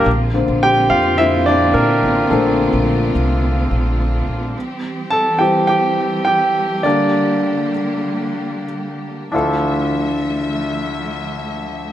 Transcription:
0.06 0.45 A#1 medium
0.06 4.51 A#2 medium
0.06 4.51 D3 medium
0.06 6.80 C4 medium
0.06 4.51 F4 medium
0.34 0.71 D3 soft
0.34 0.71 A#3 soft
0.34 0.72 C4 soft
0.48 0.87 A#1 medium
0.63 0.89 G4 medium
0.63 0.91 G5 loud
0.90 1.70 F2 medium
0.90 0.97 F4 medium
0.90 0.96 F5 medium
1.18 1.43 D3 soft
1.18 1.44 A#3 soft
1.18 1.44 C4 soft
1.18 1.45 E4 medium
1.18 1.47 E5 medium
1.46 1.73 D4 medium
1.46 1.75 D5 medium
1.74 2.01 A#2 medium
1.74 2.27 A#3 medium
1.74 2.26 A#4 medium
2.02 2.29 A1 medium
2.30 2.70 A#1 medium
2.30 3.11 D3 soft
2.30 3.12 A3 soft
2.30 3.11 A#3 soft
2.30 3.12 C4 medium
2.30 3.11 A4 medium
2.73 3.12 A#1 medium
3.15 3.67 C2 medium
3.71 4.23 A#1 medium
4.28 4.54 A#1 medium
4.55 6.82 E3 medium
4.55 9.29 G3 medium
4.55 9.30 G4 medium
5.10 5.38 A4 medium
5.10 5.40 A5 medium
5.39 6.80 E3 soft
5.39 6.81 G3 soft
5.39 6.81 C4 soft
5.39 5.67 G4 medium
5.39 5.66 G5 medium
5.67 6.22 G4 medium
5.67 6.21 G5 medium
6.25 6.81 G4 medium
6.25 6.80 G5 medium
6.83 7.70 D3 soft
6.83 9.31 D3 medium
6.83 7.71 G3 soft
6.83 9.31 A#3 medium
6.83 7.71 A#3 medium
6.83 8.65 D4 medium
6.83 8.64 D5 medium
9.32 11.92 D2 medium
9.32 11.92 D3 medium
9.32 11.92 F3 medium
9.32 11.92 A3 medium
9.32 11.92 D4 medium
9.32 11.92 E4 medium
9.32 11.92 F4 medium
9.32 11.92 E5 medium
9.36 11.92 A4 medium

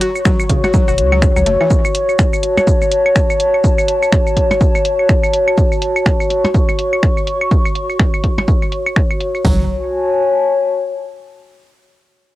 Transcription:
0.00 9.43 F#4 medium
0.00 0.05 F#4 medium
0.00 9.45 C#5 medium
0.00 2.17 C#6 loud
0.00 closed hi-hat medium
0.16 claves soft
0.16 shaker soft
0.25 0.32 F#3 loud
0.25 finger snap medium
0.25 kick loud
0.25 percussion blips medium
0.25 shaker medium
0.40 claves medium
0.40 shaker soft
0.50 0.54 C#3 loud
0.50 kick medium
0.50 closed hi-hat loud
0.64 0.68 F#4 medium
0.64 percussion blips medium
0.64 claves medium
0.64 shaker soft
0.74 0.78 F#3 loud
0.74 kick loud
0.74 shaker medium
0.88 0.99 E1 medium
0.88 0.91 F#4 medium
0.88 claves soft
0.88 shaker soft
0.98 1.30 C#2 loud
0.98 closed hi-hat medium
1.12 1.16 F#3 medium
1.12 claves medium
1.22 finger snap medium
1.22 kick loud
1.22 shaker medium
1.36 1.44 C#2 medium
1.36 1.39 F#3 medium
1.36 claves medium
1.36 shaker soft
1.46 1.57 F#1 medium
1.46 1.49 A3 medium
1.46 closed hi-hat medium
1.61 1.65 E3 loud
1.61 claves soft
1.71 kick loud
1.71 shaker medium
1.85 claves medium
1.85 shaker soft
1.95 closed hi-hat medium
2.09 claves soft
2.09 shaker soft
2.15 6.04 A5 loud
2.19 finger snap medium
2.19 kick loud
2.19 percussion blips medium
2.19 shaker medium
2.33 claves medium
2.33 shaker soft
2.43 closed hi-hat medium
2.58 percussion blips medium
2.58 claves medium
2.58 shaker soft
2.67 kick loud
2.67 shaker medium
2.82 claves soft
2.82 shaker soft
2.92 closed hi-hat medium
3.06 claves medium
3.16 finger snap medium
3.16 kick loud
3.16 shaker medium
3.30 claves medium
3.30 shaker soft
3.40 closed hi-hat medium
3.54 claves soft
3.64 kick loud
3.64 shaker medium
3.78 claves medium
3.78 shaker soft
3.88 closed hi-hat medium
4.03 claves medium
4.03 shaker soft
4.12 finger snap medium
4.12 kick loud
4.12 percussion blips medium
4.12 shaker medium
4.27 claves soft
4.27 shaker soft
4.37 kick medium
4.37 closed hi-hat medium
4.51 percussion blips medium
4.51 claves medium
4.51 shaker soft
4.61 kick loud
4.61 shaker medium
4.75 claves medium
4.75 shaker soft
4.85 closed hi-hat medium
4.99 claves soft
5.09 finger snap medium
5.09 kick loud
5.09 shaker medium
5.23 claves medium
5.23 shaker soft
5.33 closed hi-hat medium
5.48 claves medium
5.58 kick loud
5.58 shaker medium
5.72 claves soft
5.72 shaker soft
5.82 closed hi-hat medium
5.96 claves medium
5.96 shaker soft
6.02 9.47 C#6 loud
6.06 finger snap medium
6.06 kick loud
6.06 percussion blips medium
6.06 shaker medium
6.20 claves medium
6.20 shaker soft
6.30 closed hi-hat medium
6.45 percussion blips medium
6.45 claves soft
6.45 shaker soft
6.54 kick loud
6.54 shaker medium
6.69 claves medium
6.69 shaker soft
6.79 closed hi-hat medium
6.93 claves medium
7.03 finger snap medium
7.03 kick loud
7.03 shaker medium
7.17 claves soft
7.17 shaker soft
7.27 closed hi-hat medium
7.41 claves medium
7.51 kick loud
7.51 shaker medium
7.65 claves medium
7.65 shaker soft
7.75 closed hi-hat medium
7.90 claves soft
7.90 shaker soft
7.99 finger snap medium
7.99 kick loud
7.99 percussion blips medium
7.99 shaker medium
8.14 claves medium
8.14 shaker soft
8.24 kick medium
8.24 closed hi-hat medium
8.38 percussion blips medium
8.38 claves medium
8.38 shaker soft
8.48 kick loud
8.48 shaker medium
8.62 claves soft
8.62 shaker soft
8.72 closed hi-hat medium
8.86 claves medium
8.86 shaker soft
8.96 finger snap medium
8.96 kick loud
8.96 shaker medium
9.11 claves medium
9.11 shaker soft
9.21 closed hi-hat medium
9.35 claves soft
9.35 shaker soft
9.44 9.67 F#1 loud
9.44 9.67 F#3 medium
9.44 11.34 F#4 medium
9.44 kick loud
9.44 floor tom loud
9.44 open hi-hat medium
9.53 11.34 C#5 medium
9.61 11.34 G#5 medium
9.67 11.34 A5 medium

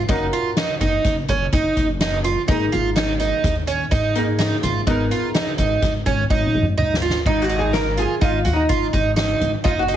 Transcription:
0.08 0.28 F#1 medium
0.08 2.44 C#4 medium
0.08 0.26 D#4 medium
0.08 2.44 F4 soft
0.08 2.44 F#4 medium
0.08 2.45 A#4 medium
0.08 kick loud
0.08 closed hi-hat medium
0.33 0.50 F4 medium
0.33 closed hi-hat medium
0.57 0.74 D#4 medium
0.57 snare loud
0.57 closed hi-hat medium
0.80 0.99 F#1 medium
0.80 1.15 D#4 medium
0.80 kick medium
0.80 closed hi-hat medium
1.04 1.24 F#1 medium
1.04 kick medium
1.04 snare soft
1.04 closed hi-hat medium
1.28 1.48 F#1 medium
1.28 1.46 C#4 medium
1.28 kick medium
1.28 closed hi-hat medium
1.52 1.62 F#1 medium
1.52 1.87 D#4 medium
1.52 kick loud
1.52 closed hi-hat medium
1.77 2.34 F#1 medium
1.77 kick medium
1.77 closed hi-hat medium
2.00 2.17 D#4 medium
2.00 snare loud
2.00 closed hi-hat medium
2.24 2.41 F4 medium
2.24 closed hi-hat medium
2.48 2.67 G#1 medium
2.48 4.12 A#3 medium
2.48 2.65 D#4 medium
2.48 4.12 D#4 medium
2.48 4.12 G#4 medium
2.48 4.12 A#4 medium
2.48 kick loud
2.48 closed hi-hat medium
2.72 3.30 G#1 medium
2.72 2.89 F4 medium
2.72 closed hi-hat medium
2.96 3.13 D#4 medium
2.96 snare loud
2.96 closed hi-hat medium
3.20 3.54 D#4 medium
3.20 closed hi-hat medium
3.44 3.82 D#2 medium
3.44 kick loud
3.44 closed hi-hat medium
3.67 3.84 C#4 medium
3.67 closed hi-hat medium
3.91 4.49 G#2 medium
3.91 4.25 D#4 medium
3.91 kick medium
3.91 snare soft
3.91 closed hi-hat medium
4.15 4.87 A#3 medium
4.15 4.87 D#4 soft
4.15 4.87 G#4 soft
4.15 4.87 A#4 medium
4.15 closed hi-hat medium
4.39 4.56 D#4 medium
4.39 snare medium
4.39 closed hi-hat medium
4.63 4.82 G#1 medium
4.63 4.80 F4 medium
4.63 closed hi-hat medium
4.87 5.06 G#1 loud
4.87 7.22 B3 medium
4.87 5.04 D#4 medium
4.87 7.23 D#4 medium
4.87 7.23 G#4 soft
4.87 7.23 A#4 medium
4.87 kick loud
4.87 closed hi-hat medium
5.11 5.28 F4 medium
5.11 closed hi-hat medium
5.34 5.52 D#4 medium
5.34 snare loud
5.34 closed hi-hat medium
5.58 5.78 G#1 medium
5.58 5.93 D#4 medium
5.58 kick medium
5.58 closed hi-hat medium
5.82 6.01 G#1 medium
5.82 kick medium
5.82 snare soft
5.82 closed hi-hat medium
6.06 6.25 G#1 medium
6.06 6.23 C#4 medium
6.06 kick medium
6.06 closed hi-hat medium
6.30 6.40 G#1 medium
6.30 6.65 D#4 medium
6.30 kick medium
6.46 high tom soft
6.54 7.12 G#1 medium
6.62 mid tom medium
6.78 6.95 D#4 medium
6.78 mid tom medium
6.94 snare medium
7.02 7.19 F4 medium
7.10 snare medium
7.25 8.03 G#1 medium
7.25 7.43 D#4 medium
7.25 7.42 D#4 medium
7.25 kick loud
7.25 crash medium
7.42 7.58 F#4 medium
7.49 7.84 D#4 medium
7.49 closed hi-hat medium
7.59 7.73 G#4 medium
7.73 7.98 A#4 medium
7.73 snare loud
7.73 closed hi-hat medium
7.97 8.15 F4 medium
7.97 8.23 G#4 medium
7.97 closed hi-hat medium
8.21 8.47 G#1 medium
8.21 8.38 D#4 medium
8.21 8.53 F4 medium
8.21 kick loud
8.21 closed hi-hat medium
8.45 8.65 D#2 medium
8.45 8.62 F#4 medium
8.45 closed hi-hat medium
8.53 8.98 D#4 medium
8.69 8.89 G#1 medium
8.69 8.86 F4 medium
8.69 kick medium
8.69 closed hi-hat medium
8.93 9.32 G#1 medium
8.93 9.10 D#4 medium
8.93 kick medium
8.93 closed hi-hat medium
9.16 9.51 D#4 medium
9.16 snare loud
9.16 closed hi-hat medium
9.41 9.51 G#1 medium
9.41 closed hi-hat medium
9.64 9.97 F#1 medium
9.64 9.81 D#4 medium
9.64 9.69 F4 medium
9.64 kick loud
9.64 closed hi-hat medium
9.79 9.96 F#4 medium
9.88 9.97 D#4 medium
9.88 closed hi-hat medium

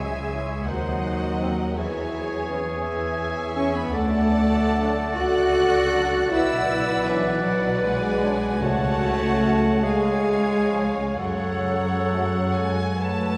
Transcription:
0.00 0.66 C#2 medium
0.00 0.64 C#3 medium
0.00 0.70 C#3 medium
0.00 0.68 G#3 medium
0.00 0.69 G#3 medium
0.00 0.68 G#4 medium
0.00 0.69 G#4 medium
0.00 0.69 C#5 medium
0.00 0.68 E5 medium
0.00 0.69 E5 medium
0.00 0.68 G#5 medium
0.33 0.46 E3 medium
0.33 0.46 C#4 medium
0.66 1.76 D#2 medium
0.66 1.53 D#3 medium
0.66 1.79 F#3 medium
0.66 1.52 D#4 medium
0.66 1.53 C5 medium
0.66 1.04 C5 medium
0.66 1.79 D#5 medium
0.66 1.78 F#5 medium
0.66 1.52 F#5 medium
0.66 1.76 F#5 medium
1.05 1.41 C5 medium
1.41 1.54 D#3 medium
1.41 1.54 C4 medium
1.41 1.79 A#4 medium
1.76 3.92 E2 medium
1.76 2.49 E3 medium
1.76 2.48 E3 medium
1.76 3.94 E3 medium
1.76 3.88 G#4 medium
1.76 2.83 G#4 medium
1.76 3.88 C#5 medium
1.76 2.85 C#5 medium
1.76 2.49 E5 medium
1.76 3.92 G#5 medium
1.76 2.82 G#5 medium
2.49 2.62 E3 medium
2.49 2.62 C#4 medium
2.84 3.90 G#4 medium
2.84 3.93 E5 medium
2.84 3.90 G#5 medium
3.55 3.70 E3 medium
3.55 3.73 C#4 loud
3.55 3.73 C#4 medium
3.55 3.69 C#4 medium
3.55 3.73 C#6 medium
3.73 3.92 B3 medium
3.73 3.93 B3 medium
3.73 3.93 B5 medium
3.90 5.14 D2 medium
3.90 6.34 D3 medium
3.90 5.17 A3 loud
3.90 5.18 A3 medium
3.90 6.31 A4 medium
3.90 5.14 D5 medium
3.90 8.45 D5 medium
3.90 8.38 F#5 medium
3.90 5.14 F#5 medium
3.90 5.18 A5 medium
3.94 5.15 A4 medium
4.78 4.92 F#3 medium
4.78 4.93 D4 medium
5.16 6.32 C#2 medium
5.16 6.31 F#4 loud
5.16 6.32 F#4 loud
5.16 6.30 F#5 medium
5.16 6.32 F#6 medium
5.20 6.31 A4 medium
5.20 6.31 D5 medium
5.94 6.07 F#3 medium
5.94 6.08 D4 medium
6.29 8.61 B1 medium
6.29 8.44 B2 medium
6.29 7.07 E4 loud
6.29 7.06 E4 medium
6.29 8.60 B4 medium
6.29 7.43 F#5 medium
6.29 7.06 E6 loud
6.33 7.45 B4 medium
6.33 7.44 D5 medium
7.04 7.43 E3 medium
7.04 7.45 E5 medium
7.08 7.46 E3 medium
7.08 7.21 F#3 medium
7.08 7.21 D4 medium
7.43 7.82 F#3 medium
7.43 8.60 B4 medium
7.43 8.60 D5 medium
7.43 8.58 F#5 medium
7.43 7.83 F#5 medium
7.82 8.60 G#3 medium
7.82 8.61 G#3 medium
7.82 8.59 G#5 medium
8.23 8.36 F#3 medium
8.23 8.36 D4 medium
8.60 9.81 C#2 medium
8.60 9.79 C#3 medium
8.60 9.80 C#3 medium
8.60 9.81 A3 loud
8.60 9.84 A3 medium
8.60 9.85 F#4 medium
8.60 9.84 F#4 medium
8.60 9.82 C#5 medium
8.60 9.80 C#5 medium
8.60 9.81 F#5 medium
8.60 9.80 F#5 medium
8.60 9.84 A5 loud
9.43 9.57 F#3 medium
9.43 9.57 C#4 medium
9.81 11.17 C#2 medium
9.81 11.16 C#3 medium
9.81 10.99 G#3 loud
9.81 11.16 G#3 medium
9.81 11.16 G#4 medium
9.81 11.00 G#4 medium
9.81 11.16 C#5 medium
9.81 11.18 F5 medium
9.81 11.21 F5 medium
9.81 11.18 G#5 medium
10.70 10.87 F3 medium
10.70 10.87 C#4 medium
11.16 13.37 F#2 medium
11.16 13.37 C#3 medium
11.16 13.37 F#3 loud
11.16 12.10 F#3 medium
11.16 13.37 A4 medium
11.16 12.45 A4 medium
11.16 13.37 C#5 medium
11.16 12.45 C#5 medium
11.16 12.09 F#5 medium
11.16 13.37 F#5 medium
12.10 12.53 F#3 medium
12.10 12.28 F#3 medium
12.10 12.27 A3 medium
12.10 12.52 F#5 medium
12.55 13.00 G#3 medium
12.55 12.97 A4 medium
12.55 13.00 G#5 medium
12.99 13.37 A3 medium
12.99 13.37 B4 medium
12.99 13.37 A5 medium

